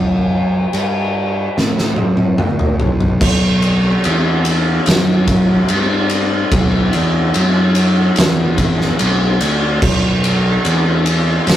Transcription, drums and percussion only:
0.73 crash
1.58 snare
1.79 snare
1.96 high tom
2.17 high tom
2.38 mid tom
2.59 mid tom
2.80 floor tom
3.01 floor tom
3.21 kick, crash
3.62 ride
4.04 ride
4.45 ride
4.86 snare, ride
5.28 kick, ride
5.68 ride
6.10 ride
6.52 kick, ride
6.93 ride
7.34 ride
7.75 ride
8.16 snare, ride
8.58 kick, ride
8.81 snare
8.99 ride
9.41 ride
9.82 kick, crash
10.24 ride
10.65 ride
11.06 ride
11.47 snare, ride

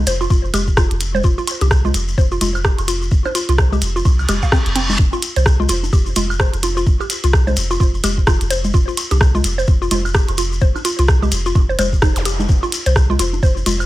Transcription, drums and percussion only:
0.07 closed hi-hat, shekere
0.21 high woodblock, shekere
0.30 kick, shekere
0.44 shekere
0.54 closed hi-hat, low conga, high woodblock, shekere
0.67 kick, shekere
0.77 kick, cross-stick, high conga, shekere
0.91 closed hi-hat, shekere
1.01 closed hi-hat, shekere
1.15 low conga, shekere
1.24 kick, shekere
1.38 shekere
1.47 closed hi-hat, high woodblock, shekere
1.61 closed hi-hat, high conga, shekere
1.71 kick, cross-stick, shekere
1.85 low conga, shekere
1.94 closed hi-hat, shekere
2.08 shekere
2.18 kick, shekere
2.31 shekere
2.41 closed hi-hat, high conga, low conga, shekere
2.55 high woodblock, shekere
2.64 kick, cross-stick, shekere
2.79 closed hi-hat, high woodblock, shekere
2.88 closed hi-hat, shekere
3.02 shekere
3.11 kick, shekere
3.25 high conga, high woodblock, shekere
3.35 closed hi-hat, shekere
3.49 closed hi-hat, shekere
3.58 kick, cross-stick, shekere
3.72 low conga, shekere
3.82 closed hi-hat, shekere
3.96 shekere
4.05 kick, high conga, high woodblock, shekere
4.19 high woodblock, shekere
4.28 closed hi-hat, low conga, high woodblock, shekere
4.42 kick, shekere
4.52 kick, cross-stick, shekere
4.66 closed hi-hat, shekere
4.75 closed hi-hat, shekere
4.90 high conga, low conga, shekere
4.99 kick, high conga, shekere
5.13 high woodblock, shekere
5.22 closed hi-hat, shekere
5.36 closed hi-hat, shekere
5.46 kick, cross-stick, shekere
5.60 low conga, shekere
5.69 closed hi-hat, shekere
5.83 high conga, shekere
5.93 kick, shekere
6.06 shekere
6.16 closed hi-hat, low conga, shekere
6.30 high woodblock, shekere
6.40 kick, cross-stick, high woodblock, shekere
6.54 closed hi-hat, shekere
6.63 closed hi-hat, high conga, shekere
6.77 shekere
6.86 kick, shekere
7.00 high woodblock, shekere
7.10 closed hi-hat, shekere
7.24 closed hi-hat, shekere
7.33 kick, cross-stick, shekere
7.47 high conga, low conga, shekere
7.57 closed hi-hat, shekere
7.71 high woodblock, shekere
7.80 kick, shekere
7.94 shekere
8.04 closed hi-hat, low conga, high woodblock, shekere
8.18 kick, shekere
8.27 kick, cross-stick, high conga, shekere
8.41 closed hi-hat, shekere
8.51 closed hi-hat, shekere
8.64 low conga, shekere
8.74 kick, shekere
8.88 shekere
8.97 closed hi-hat, high woodblock, shekere
9.11 closed hi-hat, high conga, shekere
9.21 kick, cross-stick, shekere
9.35 low conga, shekere
9.44 closed hi-hat, shekere
9.59 shekere
9.67 kick, shekere
9.82 shekere
9.91 closed hi-hat, high conga, low conga, shekere
10.05 high woodblock, shekere
10.14 kick, cross-stick, shekere
10.28 closed hi-hat, high woodblock, shekere
10.38 closed hi-hat, shekere
10.52 shekere
10.61 kick, shekere
10.76 high conga, high woodblock, shekere
10.85 closed hi-hat, shekere
10.99 closed hi-hat, shekere
11.08 kick, cross-stick, shekere
11.22 low conga, shekere
11.32 closed hi-hat, shekere
11.46 shekere
11.55 kick, high conga, high woodblock, shekere
11.69 shekere
11.79 closed hi-hat, low conga, high woodblock, shekere
11.93 kick, shekere
12.02 kick, cross-stick, shekere
12.16 closed hi-hat, shekere
12.25 closed hi-hat, shekere
12.40 high conga, low conga, shekere
12.49 kick, high conga, shekere
12.63 high woodblock, shekere
12.72 closed hi-hat, shekere
12.86 closed hi-hat, shekere
12.96 kick, cross-stick, shekere
13.10 low conga, shekere
13.19 closed hi-hat, shekere
13.33 high conga, shekere
13.43 kick, shekere
13.57 shekere
13.66 closed hi-hat, low conga, shekere
13.80 high woodblock, shekere

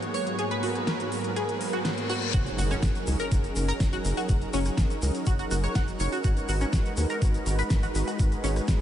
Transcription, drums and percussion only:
0.02 closed hi-hat
0.14 open hi-hat
0.27 closed hi-hat
0.39 closed hi-hat
0.51 closed hi-hat
0.63 open hi-hat
0.75 cross-stick, closed hi-hat
0.87 snare, closed hi-hat
1.00 closed hi-hat
1.12 open hi-hat
1.24 closed hi-hat
1.36 closed hi-hat
1.49 closed hi-hat
1.61 open hi-hat
1.73 cross-stick, closed hi-hat
1.85 snare, closed hi-hat
1.98 closed hi-hat
2.10 open hi-hat
2.22 closed hi-hat
2.33 kick, closed hi-hat, shaker
2.46 closed hi-hat, shaker
2.58 open hi-hat, shaker
2.71 cross-stick, closed hi-hat, shaker
2.83 kick, snare, closed hi-hat, shaker
2.95 closed hi-hat, shaker
3.07 open hi-hat, shaker
3.20 closed hi-hat, shaker
3.32 kick, closed hi-hat, shaker
3.44 closed hi-hat, shaker
3.56 open hi-hat, shaker
3.68 cross-stick, closed hi-hat, shaker
3.80 kick, snare, closed hi-hat, shaker
3.93 closed hi-hat, shaker
4.05 open hi-hat, shaker
4.17 closed hi-hat, shaker
4.29 kick, closed hi-hat, shaker
4.41 closed hi-hat, shaker
4.53 open hi-hat, shaker
4.65 cross-stick, closed hi-hat, shaker
4.77 kick, snare, closed hi-hat, shaker
4.90 closed hi-hat, shaker
5.02 open hi-hat, shaker
5.15 closed hi-hat, shaker
5.26 kick, closed hi-hat, shaker
5.39 closed hi-hat, shaker
5.51 open hi-hat, shaker
5.64 cross-stick, closed hi-hat, shaker
5.75 kick, snare, closed hi-hat, shaker
5.88 closed hi-hat, shaker
6.00 open hi-hat, shaker
6.12 closed hi-hat, shaker
6.24 kick, closed hi-hat, shaker
6.37 closed hi-hat, shaker
6.49 open hi-hat, shaker
6.61 cross-stick, closed hi-hat, shaker
6.73 kick, snare, closed hi-hat, shaker
6.86 closed hi-hat, shaker
6.97 open hi-hat, shaker
7.10 closed hi-hat, shaker
7.22 kick, closed hi-hat, shaker
7.34 closed hi-hat, shaker
7.46 open hi-hat, shaker
7.59 cross-stick, closed hi-hat, shaker
7.70 kick, snare, closed hi-hat, shaker
7.83 closed hi-hat, shaker
7.95 open hi-hat, shaker
8.08 closed hi-hat, shaker
8.19 kick, closed hi-hat, shaker
8.32 closed hi-hat, shaker
8.44 open hi-hat, shaker
8.56 cross-stick, closed hi-hat, shaker
8.68 kick, snare, closed hi-hat, shaker

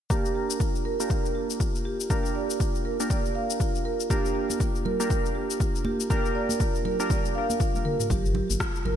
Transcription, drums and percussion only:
0.10 kick, cabasa
0.25 cabasa
0.50 cabasa
0.60 kick, cabasa
0.75 cabasa
1.00 cabasa
1.10 kick, cabasa
1.25 cabasa
1.50 cabasa
1.60 kick, cabasa
1.75 cabasa
2.00 cabasa
2.10 kick, cabasa
2.25 cabasa
2.50 cabasa
2.60 kick, cabasa
2.75 cabasa
3.00 cabasa
3.10 kick, cabasa
3.25 cabasa
3.50 cabasa
3.60 kick, cabasa
3.75 cabasa
4.00 cabasa
4.10 kick, cabasa
4.25 cabasa
4.50 high conga, cabasa
4.60 kick, cabasa
4.75 cabasa
4.86 low conga
5.00 cabasa
5.10 kick, cabasa
5.25 cabasa
5.50 cabasa
5.60 kick, cabasa
5.75 cabasa
5.85 high conga
6.00 cabasa
6.10 kick, cabasa
6.25 cabasa
6.49 high conga, cabasa
6.60 kick, cabasa
6.75 cabasa
6.85 low conga
7.00 cabasa
7.10 kick, low conga, cabasa
7.25 cabasa
7.50 high conga, cabasa
7.60 kick, high tom, cabasa
7.75 high tom, cabasa
7.85 mid tom
8.00 mid tom, cabasa
8.10 kick, low conga, cabasa
8.25 cabasa
8.35 low conga
8.50 high conga, cabasa
8.60 kick, cross-stick, cabasa
8.75 cabasa
8.85 low conga

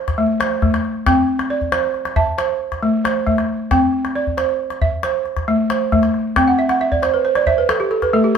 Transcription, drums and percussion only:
0.08 calabash thump, calabash click
0.41 calabash click
0.62 calabash thump, calabash click
0.74 calabash click
0.85 calabash click
1.06 calabash thump, calabash click
1.39 calabash click
1.61 calabash thump
1.72 calabash click
1.94 calabash click
2.05 calabash click
2.16 calabash thump, calabash click
2.38 calabash click
2.72 calabash thump, calabash click
3.05 calabash click
3.27 calabash thump
3.38 calabash click
3.71 calabash thump, calabash click
4.05 calabash click
4.16 calabash click
4.27 calabash thump
4.38 calabash click
4.49 calabash click
4.70 calabash click
4.82 calabash thump
5.03 calabash click
5.26 calabash click
5.37 calabash thump, calabash click
5.70 calabash click
5.92 calabash thump, calabash click
6.03 calabash click
6.14 calabash click
6.36 calabash thump, calabash click
6.69 calabash click
6.81 calabash click
6.92 calabash thump
7.03 calabash click
7.14 calabash click
7.35 calabash click
7.47 calabash thump
7.69 calabash click
7.91 calabash click
8.02 calabash thump, calabash click

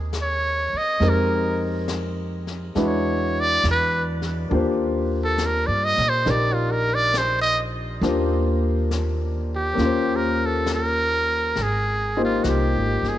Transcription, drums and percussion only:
0.13 snare, hi-hat pedal
1.01 brush sweep, snare
1.88 snare, hi-hat pedal
2.47 snare
2.75 brush sweep, snare
3.64 snare, hi-hat pedal
4.22 snare
4.51 brush sweep
5.38 snare, hi-hat pedal
5.96 snare
6.26 brush sweep, snare
7.14 snare, hi-hat pedal
8.03 brush sweep, snare
8.91 snare, hi-hat pedal
9.78 brush sweep, snare
10.66 snare, hi-hat pedal
11.56 brush sweep, snare
12.44 snare, hi-hat pedal
13.04 snare

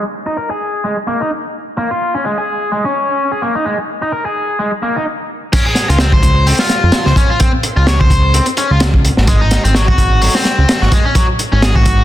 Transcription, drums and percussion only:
5.53 kick, closed hi-hat, crash
5.75 snare, closed hi-hat
5.90 closed hi-hat
5.99 snare, closed hi-hat
6.12 kick
6.23 kick, closed hi-hat
6.47 open hi-hat
6.59 snare
6.69 snare, closed hi-hat
6.92 snare, closed hi-hat
7.06 snare
7.16 kick, closed hi-hat
7.40 kick, closed hi-hat
7.63 closed hi-hat
7.87 snare, closed hi-hat
8.01 kick
8.10 kick, closed hi-hat
8.34 closed hi-hat
8.46 closed hi-hat
8.57 closed hi-hat
8.80 snare, closed hi-hat
8.94 kick
9.05 closed hi-hat
9.17 snare
9.27 kick, closed hi-hat
9.51 snare, closed hi-hat
9.65 closed hi-hat
9.75 snare, closed hi-hat
9.88 kick
9.98 kick, closed hi-hat
10.22 open hi-hat
10.35 snare
10.45 snare, closed hi-hat
10.69 snare, closed hi-hat
10.82 snare
10.92 kick, closed hi-hat
11.15 kick, closed hi-hat
11.39 closed hi-hat
11.62 snare, closed hi-hat
11.76 kick
11.85 kick, closed hi-hat

